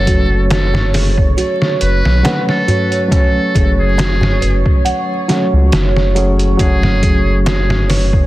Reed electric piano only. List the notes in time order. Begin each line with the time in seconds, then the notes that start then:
Already playing: F#3 A3 C#4 A4 B4
2.23 F#3 A3 C#4 B4
3.08 F#3 A3
3.13 C#4 F#4
5.28 F#3 A3 C#4 F#4
6.15 F#3 A3 C#4 G#4
6.57 F#3 A3 C#4
6.63 F#4